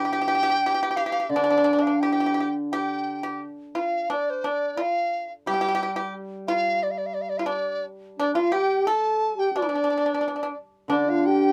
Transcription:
Already playing: D3 G5
0.05 G4
0.13 G4
0.22 G4
0.28 G4
0.35 G4
0.43 G4
0.50 G4
0.66 G4
0.74 G4
0.83 G4
0.91 G4
0.96 G4 F5
1.06 G4
1.12 G4
1.20 G4
1.29 D3 D5
1.36 D4
1.44 D4
1.50 D4
1.58 D4
1.64 D4
1.73 D4
1.79 D4 F5
1.87 D4
2.00 G4 G5
2.12 G4
2.20 G4
2.26 G4
2.34 G4
2.40 G4
2.71 G4 G5
3.23 G4
3.75 F4 F5
4.10 D4 D5
4.30 C5
4.44 D4 D5
4.77 F4
4.81 F5
5.46 G3 G4 G5
5.54 G4
5.61 G4
5.68 G4
5.75 G4
5.83 G4
5.96 G4
6.47 F4 F5
6.83 D5
6.91 F5
6.98 D5
7.06 F5
7.14 D5
7.21 F5
7.29 D5
7.37 F4 F5
7.46 D4 D5
8.18 D4 D5
8.35 F4 F5
8.52 G4 G5
8.86 A4 A5
9.37 G4 G5
9.53 D4 D5
9.62 D4
9.69 D4
9.75 D4
9.84 D4
9.90 D4
9.98 D4
10.06 D4
10.14 D4
10.21 D4
10.28 D4
10.36 D4
10.43 D4
10.88 D3 D4 D5
11.07 F4 F5
11.25 G4 G5

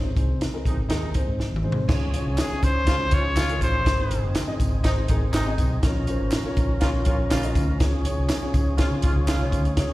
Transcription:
Already playing: G#1
0.03 muted conga
0.15 C2 C4 D#4 G#4 C5, kick, closed hi-hat, high conga
0.41 snare, closed hi-hat, high conga
0.52 C4 D#4 G#4 A#4, high conga
0.65 A#1 C3 G#3 D#4, kick, closed hi-hat, low conga
0.77 G#1
0.89 D#2 C3 G#3 C4 D#4 G#4 A#4, snare, closed hi-hat, muted conga
1.02 muted conga
1.14 C4 D#4 G#4 C5, muted fingered electric bass stroke, kick, closed hi-hat, high conga
1.27 G#2
1.39 muted fingered electric bass stroke, snare, high conga
1.51 G#1, muted conga
1.56 mid tom
1.63 G#2 C4 D#4 G#4 C5, high conga
1.72 floor tom
1.88 C#2 F3 C#4 F4 G#4 C#5, kick, snare, crash, tambourine, low conga
2.13 C#4 F4 G#4 C#5, closed hi-hat, tambourine, high conga
2.26 C2
2.38 G#4, snare, clap, closed hi-hat, tambourine, muted conga, high conga
2.49 C#4 F4 G#4 C#5, muted fingered electric bass stroke, high conga
2.63 C#2 C5, kick, closed hi-hat, tambourine, low conga
2.87 C#2 C#3 G#3 C#4 F4 G#4 C#5, kick, snare, closed hi-hat
3.00 muted conga
3.11 C#2 C#3 G#3 C#4 F4 G#4 C#5, kick, closed hi-hat, tambourine, high conga
3.36 C#2 C#3 G#3 F4, snare, clap, closed hi-hat, tambourine, muted conga, high conga
3.49 C#4 F4 G#4 A#4, closed hi-hat
3.61 A1 C5, kick, closed hi-hat, tambourine, high conga, low conga
3.86 G#1 D#3 C4 D#4 G#4 C5, kick, snare, closed hi-hat, tambourine, muted conga, low conga
4.11 C4 D#4 G#4 C5, closed hi-hat, tambourine, high conga
4.23 F#1
4.35 snare, clap, closed hi-hat, tambourine, muted conga, high conga
4.46 C4 D#4 G#4 D#5, muted fingered electric bass stroke, high conga
4.60 G#1, kick, closed hi-hat, tambourine, low conga
4.84 G#1 C3 G#3 C4 D#4 G#4 C5, kick, snare, closed hi-hat, tambourine, muted conga
4.97 muted conga
5.08 G#1 C3 G#3 C4 D#4 G#4 A#4, kick, closed hi-hat, tambourine, high conga
5.33 G#1 C3 G#3 D#4, snare, clap, closed hi-hat, tambourine, muted conga, high conga
5.46 C4 D#4 G#4 D#5, muted conga
5.58 B1, kick, closed hi-hat, tambourine, high conga, low conga
5.82 A#1 F3 C#4 F4 A#4 C#5, kick, snare, closed hi-hat, tambourine, muted conga, low conga
6.07 C#4 F4 A#4 C5, closed hi-hat, tambourine, high conga
6.20 G#1
6.32 snare, clap, closed hi-hat, tambourine, muted conga, high conga
6.44 C#4 F4 A#4 C#5, muted fingered electric bass stroke, high conga
6.57 A#1, kick, closed hi-hat, tambourine, low conga
6.80 A#1 C#3 A#3 C#4 F4 A#4 C#5, kick, snare, closed hi-hat
6.94 muted conga
7.04 A#1 C#3 A#3 C#4 F4 A#4 C#5, kick, closed hi-hat, high conga
7.29 A#1 C#3 A#3 F4, snare, clap, closed hi-hat, tambourine, high conga
7.43 C#4 F4 A#4 D#5, closed hi-hat
7.55 D2, kick, closed hi-hat, tambourine, high conga, low conga
7.80 C#2 C#4 F4 G#4 C#5, kick, snare, closed hi-hat, tambourine, low conga
8.05 C#4 F4 G#4 C#5, closed hi-hat, tambourine, high conga
8.18 C2
8.29 snare, clap, closed hi-hat, tambourine, muted conga, high conga
8.41 C#4 F4 G#4 C#5, muted fingered electric bass stroke, high conga
8.54 C#2, kick, closed hi-hat, tambourine, low conga
8.77 C#3 G#3 C#4 F4 G#4 C#5, kick, snare, closed hi-hat, tambourine, muted conga
8.91 C#3, muted conga
9.02 C#2 C#3 G#3 C#4 F4 G#4 C#5, kick, closed hi-hat, high conga
9.16 C#2
9.27 C#3 G#3 F4, snare, clap, closed hi-hat, tambourine, muted conga, high conga
9.39 C2 C#4 F4 G#4 C#5, muted conga
9.52 D2, kick, closed hi-hat, tambourine, high conga, low conga
9.65 closed hi-hat
9.77 C#2 C#4 F4 G#4 C#5, kick, snare, closed hi-hat, tambourine, low conga
9.89 muted conga

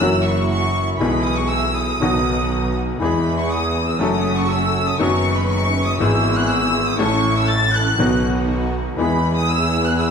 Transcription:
Already playing: E6
0.00 F#1 F#2 E3 F#3 A#3 C#4 E4 F#4
0.24 C#6
0.49 C#6
0.98 B1 B2 E3 G#3 B3 E4 G#4 B5
1.03 G#4
1.24 D#6
1.36 C#6
1.49 E6
1.74 D#6
1.99 B1 B2 D#3 F#3 B3 D#4 F#4
2.99 E2 E3 G#3 B3 E4 G#4 B5
3.04 G#4
3.40 C#6
3.51 D#6
3.88 E6
3.99 F#1 F#2 F#3 A3 C#4 F#4 A4 D#6
4.37 C#6
4.50 E6
4.88 D#6
4.98 F#1 F#2 D#3 F#3 B3 C#4 D#4 B4 C#6
5.03 F#4
5.37 B5
5.49 C#6
5.86 D#6
5.99 G#1 G#2 E3 G#3 B3 E4 G#4 E6
6.36 F#6
6.49 E6
6.88 D#6
6.97 A1 A2 E3 A3 C#4 E4 A4 C#6
7.38 E6
7.49 A6
7.75 F#6
7.98 B1 B2 D#3 F#3 B3 D#4 F#4
8.02 F#4
8.97 E2 E3 G#3 B3 E4 G#4 B5
9.37 D#6
9.49 E6
9.87 F#6
9.99 E6

